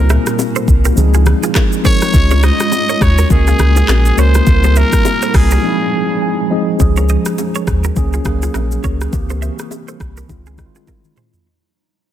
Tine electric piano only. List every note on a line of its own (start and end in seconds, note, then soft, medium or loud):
0.00 0.75 G3 medium
0.00 0.75 A#3 medium
0.00 0.75 C4 medium
0.00 0.76 E4 medium
0.00 0.79 A#4 medium
0.96 1.69 F3 medium
0.96 1.69 G#3 medium
0.96 1.69 C4 medium
0.96 1.70 D#4 medium
0.96 1.70 G#4 loud
1.83 2.08 F3 medium
1.83 2.09 G#3 medium
1.83 2.09 C4 medium
1.83 2.09 D#4 medium
1.83 2.09 A#4 medium
2.12 3.08 G#3 medium
2.12 3.08 C#4 medium
2.12 3.09 F4 medium
3.29 4.02 G#3 medium
3.29 4.02 A#3 medium
3.29 4.02 C#4 medium
3.29 4.03 F#4 medium
3.29 4.03 A#4 medium
4.17 4.41 G#3 medium
4.17 4.42 A#3 medium
4.17 4.42 C#4 medium
4.17 4.42 F#4 medium
4.17 4.43 A#4 medium
4.46 5.41 G3 medium
4.46 5.41 A#3 medium
4.46 5.41 C4 medium
4.46 5.42 E4 medium
4.46 4.55 A4 medium
4.55 5.45 A#4 medium
5.62 6.35 F3 medium
5.62 6.35 G#3 medium
5.62 6.35 C4 medium
5.62 6.36 D#4 medium
5.62 6.36 G#4 medium
6.22 6.49 G#5 medium
6.50 6.74 F3 medium
6.50 6.75 G#3 medium
6.50 6.75 C4 medium
6.50 6.75 D#4 medium
6.50 6.76 G#4 medium
6.50 6.78 D#5 medium
6.79 7.74 F3 medium
6.79 7.74 G#3 medium
6.79 7.75 C#4 medium
6.79 7.75 G#4 loud
7.95 8.20 F#3 medium
7.95 8.21 A#3 medium
7.95 8.21 C#4 medium
7.95 8.21 G#4 loud
8.24 8.97 F#3 medium
8.24 8.97 A#3 medium
8.24 8.98 C#4 medium
8.24 8.98 G#4 loud
9.11 10.07 E3 medium
9.11 10.07 A#3 medium
9.11 10.07 C4 medium
9.11 10.08 G4 loud
10.28 10.53 D#3 medium
10.28 10.53 G#3 medium
10.28 10.54 C4 medium
10.28 10.54 F4 loud
10.57 11.30 D#3 medium
10.57 11.30 G#3 medium
10.57 11.31 C4 medium
10.57 10.67 E4 medium
10.66 11.34 F4 loud